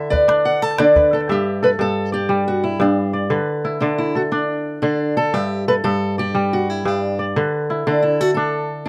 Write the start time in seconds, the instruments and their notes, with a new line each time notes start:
Already playing: kora D3 E4 D5, steel-string acoustic guitar E5
0.10 kora B4, steel-string acoustic guitar D5, calabash thump
0.28 kora D4, calabash click
0.45 steel-string acoustic guitar F#5
0.62 kora A4, steel-string acoustic guitar A5, calabash click
0.71 calabash click
0.79 kora D3, steel-string acoustic guitar D4 D5, calabash click
0.96 kora B4, calabash thump
1.13 kora A4, steel-string acoustic guitar A4, calabash click
1.21 calabash click
1.29 kora G2 E5, steel-string acoustic guitar G4
1.63 kora A4, steel-string acoustic guitar B4
1.79 kora G2, steel-string acoustic guitar A4
2.12 steel-string acoustic guitar G4, kora D5
2.29 kora G3
2.48 steel-string acoustic guitar F#4
2.64 steel-string acoustic guitar E4
2.80 kora G2, steel-string acoustic guitar D4
3.13 kora D5
3.30 kora D3 B4
3.65 kora E4
3.80 kora D3, steel-string acoustic guitar D4
3.98 steel-string acoustic guitar E4
4.15 steel-string acoustic guitar F#4, kora A4
4.32 steel-string acoustic guitar D4, kora D4
4.82 kora D3, steel-string acoustic guitar D4
5.17 kora A4, steel-string acoustic guitar A4
5.34 kora G2 E5, steel-string acoustic guitar G4
5.68 kora A4, steel-string acoustic guitar B4
5.84 kora G2, steel-string acoustic guitar A4
6.18 steel-string acoustic guitar G4, kora D5
6.35 kora G3
6.53 steel-string acoustic guitar F#4
6.70 steel-string acoustic guitar E4
6.85 kora G2, steel-string acoustic guitar D4
7.19 kora D5
7.36 kora D3 B4
7.70 kora E4
7.87 kora D3, steel-string acoustic guitar D4
8.02 steel-string acoustic guitar E4
8.21 steel-string acoustic guitar F#4, kora A4
8.34 kora D4, steel-string acoustic guitar A4